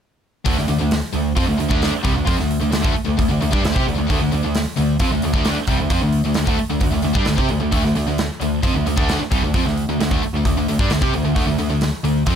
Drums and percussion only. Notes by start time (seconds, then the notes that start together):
0.46 kick, open hi-hat
0.58 snare
0.68 open hi-hat
0.91 snare, open hi-hat
1.13 open hi-hat
1.37 kick, open hi-hat
1.60 open hi-hat
1.71 kick
1.82 snare, open hi-hat
2.05 kick, open hi-hat
2.27 kick, open hi-hat
2.40 snare
2.51 open hi-hat
2.73 snare, open hi-hat
2.84 kick
2.96 open hi-hat
3.19 kick, open hi-hat
3.42 open hi-hat
3.53 kick
3.64 snare, open hi-hat
3.76 kick, snare
3.88 open hi-hat
4.10 kick, open hi-hat
4.32 open hi-hat
4.55 snare, open hi-hat
4.77 open hi-hat
4.99 kick, open hi-hat
5.22 open hi-hat
5.34 kick
5.45 snare, open hi-hat
5.57 snare
5.67 kick, open hi-hat
5.90 kick, open hi-hat
6.12 open hi-hat
6.34 snare, open hi-hat
6.47 kick
6.58 open hi-hat
6.81 kick, open hi-hat
7.02 open hi-hat
7.15 kick
7.25 snare, open hi-hat
7.38 kick, snare
7.49 open hi-hat
7.72 kick, open hi-hat
7.85 snare
7.95 open hi-hat
8.18 snare, open hi-hat
8.41 open hi-hat
8.63 kick, open hi-hat
8.87 open hi-hat
8.98 kick
9.09 snare, open hi-hat
9.22 snare
9.32 kick, open hi-hat
9.54 kick, open hi-hat
9.67 snare
9.77 open hi-hat
10.01 snare, open hi-hat
10.11 kick
10.23 open hi-hat
10.45 kick, open hi-hat
10.68 open hi-hat
10.79 kick
10.90 snare, open hi-hat
11.02 kick, snare
11.14 open hi-hat
11.36 kick, open hi-hat
11.58 open hi-hat
11.81 snare, open hi-hat
12.05 open hi-hat
12.26 kick, open hi-hat